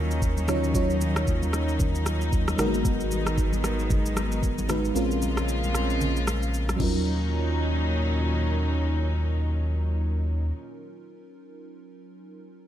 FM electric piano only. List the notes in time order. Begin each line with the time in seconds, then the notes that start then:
Already playing: F#3 C#4 D#4 F4 A#4
0.47 F#3 C#4 D#4 F4 C#5
0.73 F#3 C#4 D#4 F4 C#5
2.58 G#3 A#3 D#4 F#4 A#4
2.65 B3
4.68 G#3 B3 D#4 F#4 B4
4.94 G#3 C4 C#4 F4 A#4
6.76 F#3 C#4 D#4
6.82 F4 A#4